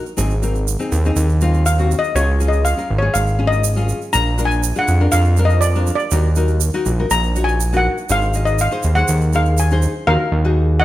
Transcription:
Already playing: steel pan D#5
0.06 shaker
0.17 analog synth bass G#1, nylon-string guitar C4 D#4 G#4, shaker
0.30 shaker
0.42 nylon-string guitar C4 D#4 A#4, shaker
0.55 shaker
0.68 shaker
0.79 nylon-string guitar C4 D#4 G#4, shaker
0.92 analog synth bass D#2, shaker
1.05 nylon-string guitar C4 D#4 G#4, shaker
1.16 analog synth bass D#2, shaker
1.29 shaker
1.41 nylon-string guitar C4 D#4 F4, shaker
1.54 shaker
1.66 steel pan F5, shaker
1.79 nylon-string guitar C4 D#4 F#4, shaker
1.91 shaker
1.99 steel pan D#5
2.04 shaker
2.15 analog synth bass C#2, nylon-string guitar C#4 F4 G#4, steel pan C#5, shaker
2.40 nylon-string guitar C#4 F4 G#4, shaker
2.48 steel pan D#5
2.53 shaker
2.65 steel pan F5, shaker
2.77 nylon-string guitar C#4 F4 A#4, shaker
2.90 analog synth bass G#1
2.98 nylon-string guitar C#4 F4, steel pan C#5
3.02 nylon-string guitar G#4
3.14 analog synth bass G#1, steel pan F5, shaker
3.27 shaker
3.39 nylon-string guitar C#4 F4 G#4
3.47 steel pan D#5
3.52 shaker
3.64 shaker
3.76 nylon-string guitar C#4 F4 G#4, shaker
3.89 shaker
4.02 shaker
4.13 analog synth bass A#1, nylon-string guitar D4 F4 A#4, steel pan A#5, shaker
4.38 nylon-string guitar D4 F4 A#4, shaker
4.45 steel pan G#5
4.51 shaker
4.63 shaker
4.76 nylon-string guitar D4 F4 G#4, steel pan F#5, shaker
4.88 analog synth bass F2, shaker
5.00 nylon-string guitar D4 F4 A#4
5.12 analog synth bass F2, steel pan F5, shaker
5.25 shaker
5.37 nylon-string guitar D4 F4 A#4, shaker
5.45 steel pan D#5
5.50 shaker
5.61 steel pan D5, shaker
5.75 nylon-string guitar D4 F4 A#4, shaker
5.87 shaker
5.95 steel pan D5, shaker
6.11 analog synth bass D#2, nylon-string guitar D#4 F#4 A#4, shaker
6.36 nylon-string guitar D#4 F#4 A#4, shaker
6.48 shaker
6.60 shaker
6.74 nylon-string guitar D#4 F#4 A#4, shaker
6.86 analog synth bass A#1, shaker
6.99 nylon-string guitar D#4 F#4 A#4
7.10 analog synth bass A#1, steel pan A#5, shaker
7.23 shaker
7.35 nylon-string guitar D#4 F#4 C#5, shaker
7.44 steel pan G#5
7.48 shaker
7.60 shaker
7.73 nylon-string guitar D#4 F#4 A#4, shaker
7.77 steel pan F#5
7.98 shaker
8.09 analog synth bass G#1, nylon-string guitar D#4 G#4 C5, steel pan F5, shaker
8.22 shaker
8.33 nylon-string guitar D#4 G#4 D#5, shaker
8.45 steel pan D#5, shaker
8.59 steel pan F5, shaker
8.71 nylon-string guitar D#4 G#4 C5, shaker
8.83 analog synth bass D#2, shaker
8.95 nylon-string guitar D#4 G#4 C5, steel pan F#5, shaker
9.08 analog synth bass D#2, shaker
9.21 shaker
9.33 nylon-string guitar D#4 G#4 A#4, steel pan F5, shaker
9.45 shaker
9.57 steel pan G#5, shaker
9.71 nylon-string guitar D#4 G#4 C5, shaker
9.82 shaker
10.07 analog synth bass D#2, nylon-string guitar D#4 F#4 A#4, steel pan A#4 F5
10.32 analog synth bass D#2
10.45 nylon-string guitar D#4 F#4 G#4
10.80 steel pan D#5 F#5

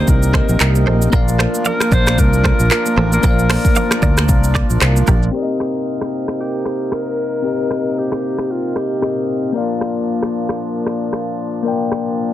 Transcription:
Already playing: harmonium C3 A#3 D#4, tine electric piano C4 G4 A#4 D5
0.08 fingered electric bass C2, alto saxophone A#4, kick, shaker
0.23 shaker
0.33 tine electric piano C4 G4 A#4 D#5, clean electric guitar A4 C5, finger snap, kick, cross-stick, high conga
0.49 fingered electric bass A#1, shaker
0.60 fingered electric bass C2, clean electric guitar G4 A#4, clap, shaker
0.75 high conga, shaker
0.87 fingered electric bass A#1, clean electric guitar A4 C5, high conga, low conga
1.02 shaker
1.10 fingered electric bass A#1, harmonium F3 D4, tine electric piano A#3 A#4 D5, clean electric guitar F4 A#4, kick, low conga, shaker
1.15 tine electric piano F5
1.28 shaker
1.39 clean electric guitar A4 C5, finger snap, cross-stick, high conga
1.54 high conga, shaker
1.65 alto saxophone A#4, clean electric guitar D5 F5, low conga, shaker
1.80 finger snap, cross-stick, high conga, shaker
1.92 fingered electric bass A#1, clean electric guitar A#4 D5, alto saxophone C5, kick, low conga, shaker
2.07 finger snap, cross-stick, high conga, shaker
2.18 fingered electric bass C2, alto saxophone A#4, kick, shaker
2.33 shaker
2.44 clean electric guitar A4 C5, finger snap, kick, cross-stick, high conga
2.60 fingered electric bass A#1, shaker
2.71 clean electric guitar F4 A#4, clap, shaker
2.86 high conga, shaker
2.97 fingered electric bass A1, clean electric guitar A4 C5, high conga, low conga
3.12 alto saxophone A#4, shaker
3.21 fingered electric bass A#1, tine electric piano A#3 A#4 C5, clean electric guitar A#4, kick, low conga, shaker
3.25 clean electric guitar F4, tine electric piano F5
3.31 tine electric piano D5
3.39 shaker
3.50 clean electric guitar A4 C5, finger snap, cross-stick, open hi-hat, high conga
3.65 kick, high conga, shaker
3.76 clean electric guitar D5 F5, low conga, shaker
3.91 finger snap, cross-stick, high conga, shaker
4.02 fingered electric bass D2, clean electric guitar A#4 D5, kick, low conga, shaker
4.17 finger snap, cross-stick, high conga, shaker
4.29 fingered electric bass C2, kick, shaker
4.44 shaker
4.55 clean electric guitar A#4 D5, finger snap, kick, cross-stick, high conga
4.70 fingered electric bass A#1, shaker
4.81 fingered electric bass C2, clean electric guitar F4 C5, finger snap, cross-stick, clap, shaker
4.96 high conga, shaker
5.07 fingered electric bass A#1, clean electric guitar G4 A#4, kick, high conga, low conga, shaker
5.23 shaker
5.31 harmonium C3 A#3 D#4, tine electric piano C4 G4 A#4
5.36 tine electric piano D5
5.43 tine electric piano D#5
5.60 finger snap, cross-stick
5.75 shaker
5.86 shaker
6.01 finger snap, cross-stick
6.13 shaker
6.28 finger snap, cross-stick, shaker
6.39 alto saxophone G4, shaker
6.65 finger snap, cross-stick
6.81 shaker
6.92 alto saxophone A#4, finger snap, cross-stick
7.18 shaker
7.33 shaker
7.42 tine electric piano C4 G4 A#4, shaker
7.47 tine electric piano D#5
7.71 finger snap, cross-stick
7.86 shaker
7.96 alto saxophone G4, shaker
8.12 finger snap, cross-stick
8.23 shaker
8.38 finger snap, cross-stick
8.50 alto saxophone F4, shaker
8.76 alto saxophone G4, finger snap, cross-stick
8.91 shaker
9.01 tine electric piano C4 G4 A#4 D#5, finger snap, cross-stick, shaker
9.28 shaker
9.44 shaker
9.52 harmonium A#2 F3 D4, tine electric piano A#3 A#4 D5, shaker
9.57 tine electric piano F5
9.81 finger snap, cross-stick
9.96 shaker
10.07 shaker
10.23 finger snap, cross-stick
10.34 shaker
10.49 finger snap, cross-stick, shaker
10.60 shaker
10.86 finger snap, cross-stick, shaker
11.02 shaker
11.13 finger snap, cross-stick, shaker
11.39 shaker
11.54 shaker
11.63 tine electric piano A#3 A#4 D5, shaker
11.68 tine electric piano G5
11.92 finger snap, cross-stick, shaker
12.07 shaker
12.18 shaker

